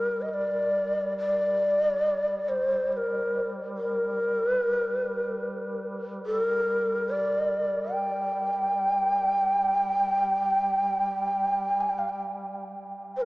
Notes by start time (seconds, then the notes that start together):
Already playing: G3 A#4
0.21 D#5
0.29 D#5
0.34 D5
1.18 D5
2.48 C5
2.92 C5
2.97 A#4
3.77 A#4
4.50 B4
4.69 A#4
4.91 B4
5.10 A#4
6.26 A4
6.41 A#4
7.09 D5
7.93 G5
11.80 G#5
11.90 G5
11.99 F5
12.09 G5
13.15 G3 C5
13.22 A#4